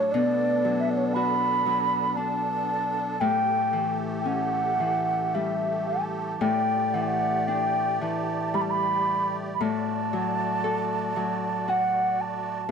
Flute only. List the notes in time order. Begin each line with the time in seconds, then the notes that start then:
Already playing: C#5
0.12 D5
0.80 E5
0.90 D5
0.97 C#5
1.05 D5
1.13 B5
2.16 A5
3.20 G5
4.19 G5
4.26 F#5
5.35 E5
5.88 A5
6.41 G5
6.93 F#5
7.01 G5
7.07 F#5
7.47 G5
8.01 A5
8.54 B5
8.61 A5
8.70 B5
9.54 B5
9.61 A5
11.69 F#5
12.21 A5